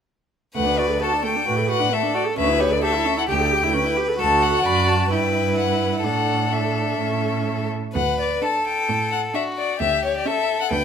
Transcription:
0.55 D2 A3 B4 F#5
0.66 D4
0.78 F#4 D5
0.90 A4
1.01 F#4 A4 A5
1.13 D4
1.24 A3 G5
1.36 D4
1.46 A2 F#4 B4
1.58 A4
1.69 F#4 F#5
1.80 D4
1.91 A3 A4 E5
2.03 D4
2.14 F#4 D5
2.26 A4
2.38 D2 C#4 B4 E5
2.48 E4
2.60 G4 C#5
2.71 A4 D5
2.82 G4 A4 E5
2.94 E4
3.06 C#4
3.17 E4 F#5
3.28 D2 G4 G5
3.39 A4
3.51 G4
3.63 E4
3.74 C#4 B4
3.85 E4
3.97 G4
4.08 A4
4.19 D2 F#4 A4 A5
4.42 F#5
4.65 F#2 D5 B5
4.88 A5
5.10 G2 E4 B4 G5
5.58 F#5
6.04 A2 D4 A4 F#5
6.52 D4 E5
7.00 A2 C#4
7.95 D2 B4 F#5
8.19 D5
8.42 D4 A4 A5
8.66 G5
8.89 A2
9.12 F#5
9.34 D4 F#4 E5
9.58 D5
9.80 D2 G4 E5
10.04 C#5
10.16 D5
10.26 C#4 A4 E5
10.60 F#5
10.71 D2 B4 G5

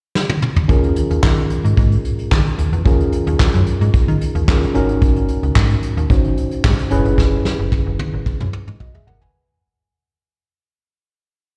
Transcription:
0.15 snare
0.29 high tom
0.42 mid tom
0.56 floor tom
0.68 D#2 C#4 F4 G#4 A#4, kick, closed hi-hat
0.84 closed hi-hat
0.96 closed hi-hat
1.11 D#2, closed hi-hat
1.23 D#3, kick, snare, clap
1.37 closed hi-hat
1.50 closed hi-hat
1.65 G#2, closed hi-hat
1.77 G#2, kick, closed hi-hat
1.92 closed hi-hat
2.05 closed hi-hat
2.19 closed hi-hat
2.31 D#3, kick, snare, clap
2.46 closed hi-hat
2.58 D#2, closed hi-hat
2.73 E2, closed hi-hat
2.85 D#2 C#4 F4 G#4 A#4, kick, closed hi-hat
3.00 closed hi-hat
3.12 closed hi-hat
3.27 D#2, closed hi-hat
3.40 kick, snare, clap
3.54 F#2, closed hi-hat
3.67 closed hi-hat
3.81 G#2, closed hi-hat
3.94 D#3, kick, closed hi-hat
4.08 D#3, closed hi-hat
4.21 closed hi-hat
4.35 D#2, closed hi-hat
4.48 D#2 C#4 F4 G#4 A#4, kick, snare, clap
4.62 closed hi-hat
4.74 G#1 C#4 D#4 F#4 A#4, closed hi-hat
4.89 closed hi-hat
5.02 kick, closed hi-hat
5.16 closed hi-hat
5.28 closed hi-hat
5.43 C#2, closed hi-hat
5.56 G#2, kick, snare, clap
5.70 closed hi-hat
5.83 closed hi-hat
5.97 D#2, closed hi-hat
6.10 G#1 C#4 D#4 F#4 C5, kick, closed hi-hat
6.24 closed hi-hat
6.37 closed hi-hat
6.51 closed hi-hat
6.64 G#2, kick, snare, clap
6.78 closed hi-hat
6.91 F#1 C#4 E4 G#4 B4, closed hi-hat
7.05 G1, closed hi-hat
7.18 F#1, kick, snare
7.45 snare
7.59 F#1
7.72 kick, high tom
7.86 F#1
7.99 high tom
8.14 G#1
8.26 F#2, kick, mid tom
8.40 F#2, mid tom
8.53 mid tom
8.67 G#2, mid tom
8.80 B1 F#4 D#5, kick, mid tom
8.94 G#4 E5, floor tom
9.07 G1 A#4 F#5, floor tom
9.21 B4 G#5, floor tom

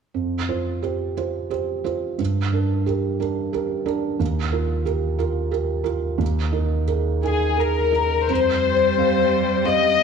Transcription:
0.14 F2
0.49 F4 C5
0.82 G4 C5
1.17 F4 C5
1.50 G4 C5
1.84 F4 C5
2.18 G2
2.52 D4 A#4
2.86 G4 A#4
3.20 D4 A#4
3.53 G4 A#4
3.86 D4 A#4
4.19 D#2
4.52 F4 A#4
4.85 G4 A#4
5.19 F4 A#4
5.51 G4 A#4
5.84 F4 A#4
6.18 D#2
6.52 D#4 A#4
6.88 G#4 A#4
7.23 D#4 G#4 A#4
7.56 G#4 A#4
7.92 D#4 A#4
8.28 F2 G3 C5
8.97 C4 G4 F5
9.65 C4 G4 D#5 F5

